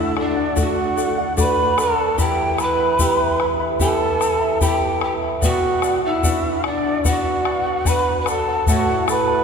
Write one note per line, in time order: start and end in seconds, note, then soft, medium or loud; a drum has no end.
0.00 2.15 D3 medium
0.00 0.55 A3 medium
0.00 0.55 D4 soft
0.00 0.18 E4 medium
0.00 0.55 F#4 medium
0.00 0.15 A4 medium
0.00 0.16 D5 medium
0.00 0.17 E5 medium
0.00 0.16 F#5 medium
0.16 0.61 D4 medium
0.16 0.36 A4 medium
0.16 0.37 D5 medium
0.16 0.60 D5 medium
0.16 0.35 F#5 medium
0.16 bombo rim medium
0.36 0.55 D5 soft
0.36 0.55 F#5 medium
0.56 1.35 A3 soft
0.56 1.35 D4 soft
0.56 1.35 F#4 medium
0.56 0.95 A4 medium
0.56 0.96 D5 medium
0.56 0.97 F#5 medium
0.56 1.38 F#5 loud
0.56 bombo low medium
0.56 shaker medium
0.60 1.10 F#4 medium
0.96 1.17 A4 medium
0.96 1.17 D5 medium
0.96 1.17 F#5 medium
0.96 shaker medium
1.18 1.36 D5 soft
1.18 1.37 F#5 medium
1.37 2.16 A3 soft
1.37 2.16 D4 soft
1.37 2.16 F#4 medium
1.37 1.76 A4 medium
1.37 1.76 D5 medium
1.37 1.78 F#5 medium
1.37 1.82 B5 loud
1.37 bombo low medium
1.37 shaker medium
1.41 1.82 B4 medium
1.77 1.98 A4 medium
1.77 2.19 A4 medium
1.77 1.98 D5 medium
1.77 1.97 F#5 medium
1.77 2.20 A5 loud
1.77 bombo rim medium
1.77 shaker medium
1.98 2.18 D5 soft
1.98 2.18 F#5 medium
2.17 5.39 E3 medium
2.17 2.58 E4 medium
2.17 2.58 G4 medium
2.17 2.64 G4 medium
2.17 2.58 E5 medium
2.17 2.57 G5 medium
2.17 2.62 G5 loud
2.17 2.59 B5 medium
2.17 bombo low medium
2.17 shaker medium
2.58 2.79 E4 medium
2.58 3.55 B4 medium
2.58 2.78 E5 medium
2.58 2.79 G5 medium
2.58 2.77 B5 medium
2.58 3.55 B5 loud
2.58 bombo rim medium
2.58 shaker medium
2.79 2.98 E4 soft
2.79 2.99 E5 medium
2.79 2.99 B5 medium
2.99 3.78 B3 medium
2.99 3.40 E4 medium
2.99 3.79 E4 soft
2.99 3.40 G4 medium
2.99 3.79 G4 medium
2.99 3.40 E5 medium
2.99 3.38 G5 medium
2.99 3.40 B5 medium
2.99 bombo low medium
2.99 shaker loud
3.40 3.59 E4 medium
3.40 3.59 E5 medium
3.40 3.60 G5 soft
3.40 3.58 B5 medium
3.40 bombo rim medium
3.59 3.80 E4 soft
3.59 3.80 E5 soft
3.59 3.80 B5 soft
3.79 4.59 B3 medium
3.79 4.59 E4 soft
3.79 4.21 E4 medium
3.79 4.21 G4 medium
3.79 4.59 G4 medium
3.79 4.59 A4 medium
3.79 4.22 E5 medium
3.79 4.20 G5 medium
3.79 4.58 A5 loud
3.79 4.22 B5 medium
3.79 bombo low medium
3.79 shaker loud
4.21 4.41 E4 medium
4.21 4.40 E5 medium
4.21 4.41 G5 medium
4.21 4.39 B5 medium
4.21 bombo rim medium
4.21 shaker medium
4.41 4.61 E4 soft
4.41 4.61 E5 medium
4.41 4.61 B5 medium
4.61 5.40 B3 medium
4.61 5.40 E4 soft
4.61 5.00 E4 medium
4.61 5.02 G4 medium
4.61 5.41 G4 medium
4.61 5.01 G4 medium
4.61 5.01 E5 medium
4.61 4.99 G5 medium
4.61 5.00 G5 loud
4.61 5.01 B5 medium
4.61 bombo low medium
4.61 shaker loud
5.00 5.22 E4 medium
5.00 5.13 G4 medium
5.00 5.21 E5 medium
5.00 5.22 G5 medium
5.00 5.13 G5 medium
5.00 5.21 B5 medium
5.00 bombo rim medium
5.22 5.41 E4 soft
5.22 5.43 E5 medium
5.22 5.43 B5 medium
5.41 8.64 B2 medium
5.41 6.00 F#4 medium
5.41 5.82 B4 medium
5.41 5.83 D5 medium
5.41 5.83 F#5 loud
5.41 6.01 F#5 loud
5.41 bombo low medium
5.41 shaker loud
5.82 6.04 B4 medium
5.82 6.04 D5 medium
5.82 6.03 F#5 medium
5.82 bombo rim medium
5.82 shaker medium
6.04 6.61 E4 medium
6.04 6.22 D5 soft
6.04 6.62 E5 medium
6.04 6.23 F#5 medium
6.23 7.03 B3 medium
6.23 7.03 D4 medium
6.23 7.03 F#4 medium
6.23 6.62 B4 medium
6.23 6.62 D5 medium
6.23 6.63 F#5 medium
6.23 bombo low medium
6.23 shaker loud
6.63 7.03 D4 medium
6.63 6.84 B4 medium
6.63 6.84 D5 medium
6.63 7.03 D5 medium
6.63 6.82 F#5 medium
6.63 bombo rim medium
6.83 7.04 D5 soft
6.83 7.04 F#5 medium
7.04 7.84 B3 soft
7.04 7.84 D4 soft
7.04 7.84 F#4 medium
7.04 7.89 F#4 medium
7.04 7.43 B4 medium
7.04 7.44 D5 medium
7.04 7.44 F#5 medium
7.04 7.89 F#5 medium
7.04 bombo low medium
7.04 shaker loud
7.44 7.65 B4 medium
7.44 7.65 D5 medium
7.44 7.64 F#5 medium
7.44 bombo rim medium
7.65 7.84 D5 medium
7.65 7.85 F#5 medium
7.85 8.65 B3 medium
7.85 8.65 D4 soft
7.85 8.65 F#4 soft
7.85 8.25 B4 medium
7.85 8.21 B4 medium
7.85 8.25 D5 medium
7.85 8.26 F#5 medium
7.85 8.19 B5 loud
7.85 bombo low medium
7.85 shaker loud
8.20 8.31 B4 medium
8.20 8.30 B5 medium
8.26 8.69 A4 medium
8.26 8.47 B4 medium
8.26 8.47 D5 medium
8.26 8.47 F#5 medium
8.26 8.68 A5 medium
8.26 bombo rim medium
8.26 shaker medium
8.48 8.68 D5 soft
8.48 8.68 F#5 medium
8.67 9.44 A2 medium
8.67 9.07 E4 medium
8.67 9.06 F#4 medium
8.67 9.07 A4 medium
8.67 9.08 C#5 medium
8.67 9.07 E5 medium
8.67 9.06 F#5 loud
8.67 9.08 A5 medium
8.67 bombo low medium
8.67 shaker loud
9.08 9.28 E4 medium
9.08 9.27 A4 medium
9.08 9.44 B4 medium
9.08 9.28 E5 medium
9.08 9.26 A5 medium
9.08 9.44 B5 loud
9.08 bombo rim medium
9.08 shaker medium
9.28 9.44 E4 soft
9.28 9.44 A4 soft
9.28 9.44 A5 medium